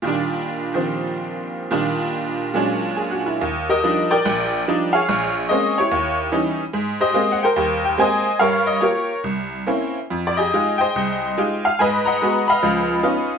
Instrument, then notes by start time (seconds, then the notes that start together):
honky-tonk piano
0.02 A#2 D#3 G3
0.07 D4
0.74 D#3 F3 C4
1.71 A#2 D#3 G3 D4
2.54 A#2 F#3 G#3 C#4 D4
2.97 G#4
3.11 F#4
3.26 E4
3.41 D#2
3.70 G4 A#4 D#5
3.84 F3 G3 D4 D#4
4.11 A#4 D5 G5
4.25 A#1
4.68 F3 G3 D4 D#4
4.93 G#4 C#5 F5
5.09 A#1
5.49 G#3 A#3 C4 C#4 D#5
5.78 E4 G4 C#5
5.91 D#2
6.32 E3 G3 C#4 D#4
6.73 G#2
7.01 G4 C5 D#5
7.14 G#3 A#3 C4 G4
7.32 F#5
7.43 A#4 C5 G5
7.56 D#2 G3
7.85 G5
7.98 G#3 A#3 C4 G4 C5 D#5 G#5
8.39 G2 G3 A#4 C#5 F5
8.67 D#5
8.81 A#3 F4 G4 A#4 C#5
9.24 C2
9.67 A#3 C4 C#4 E4
10.11 F2
10.27 D5
10.37 G4 G#4 D#5
10.54 G#3 D#4 F4 G4
10.78 C5 D#5 G5
10.96 C2
11.38 G#3 D#4 F4 G4
11.65 F5
11.79 G#2 B4 D#5 G#5
12.05 D#5 F#5 A#5
12.22 G#3 B3 F#4
12.48 D#5 F5 B5
12.63 C#2 F3
13.03 B3 C#4 D#4 F4